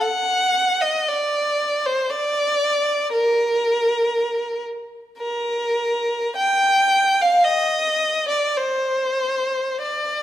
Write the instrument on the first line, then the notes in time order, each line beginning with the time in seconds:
violin
0.01 F#5
0.81 D#5
1.08 D5
1.86 C5
2.10 D5
3.13 A#4
5.18 A#4
6.37 G5
7.21 F5
7.45 D#5
8.28 D5
8.57 C5
9.82 D5